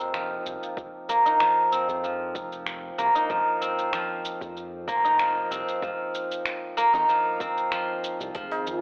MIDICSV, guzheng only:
0, 0, Header, 1, 2, 480
1, 0, Start_track
1, 0, Tempo, 631579
1, 587, Time_signature, 4, 2, 24, 8
1, 6698, End_track
2, 0, Start_track
2, 0, Title_t, "Guzheng"
2, 0, Program_c, 0, 107
2, 0, Note_on_c, 0, 53, 87
2, 0, Note_on_c, 0, 58, 93
2, 0, Note_on_c, 0, 60, 67
2, 0, Note_on_c, 0, 63, 92
2, 100, Note_off_c, 0, 53, 0
2, 109, Note_on_c, 0, 53, 73
2, 825, Note_off_c, 0, 58, 0
2, 828, Note_on_c, 0, 58, 93
2, 951, Note_off_c, 0, 63, 0
2, 954, Note_on_c, 0, 63, 94
2, 1058, Note_off_c, 0, 53, 0
2, 1067, Note_on_c, 0, 53, 90
2, 1304, Note_off_c, 0, 60, 0
2, 1307, Note_on_c, 0, 60, 70
2, 1538, Note_off_c, 0, 53, 0
2, 1547, Note_on_c, 0, 53, 74
2, 2264, Note_off_c, 0, 58, 0
2, 2267, Note_on_c, 0, 58, 93
2, 2391, Note_off_c, 0, 63, 0
2, 2394, Note_on_c, 0, 63, 89
2, 2499, Note_off_c, 0, 53, 0
2, 2508, Note_on_c, 0, 53, 92
2, 2742, Note_off_c, 0, 60, 0
2, 2745, Note_on_c, 0, 60, 70
2, 2977, Note_off_c, 0, 53, 0
2, 2986, Note_on_c, 0, 53, 79
2, 3703, Note_off_c, 0, 58, 0
2, 3706, Note_on_c, 0, 58, 89
2, 3831, Note_off_c, 0, 63, 0
2, 3834, Note_on_c, 0, 63, 93
2, 3938, Note_off_c, 0, 53, 0
2, 3947, Note_on_c, 0, 53, 90
2, 4184, Note_off_c, 0, 60, 0
2, 4187, Note_on_c, 0, 60, 69
2, 4417, Note_off_c, 0, 53, 0
2, 4426, Note_on_c, 0, 53, 71
2, 5142, Note_off_c, 0, 58, 0
2, 5146, Note_on_c, 0, 58, 95
2, 5268, Note_off_c, 0, 63, 0
2, 5271, Note_on_c, 0, 63, 90
2, 5376, Note_off_c, 0, 53, 0
2, 5385, Note_on_c, 0, 53, 90
2, 5621, Note_off_c, 0, 60, 0
2, 5625, Note_on_c, 0, 60, 66
2, 5856, Note_off_c, 0, 53, 0
2, 5865, Note_on_c, 0, 53, 75
2, 6336, Note_off_c, 0, 53, 0
2, 6345, Note_on_c, 0, 53, 74
2, 6698, Note_off_c, 0, 53, 0
2, 6698, Note_off_c, 0, 58, 0
2, 6698, Note_off_c, 0, 60, 0
2, 6698, Note_off_c, 0, 63, 0
2, 6698, End_track
0, 0, End_of_file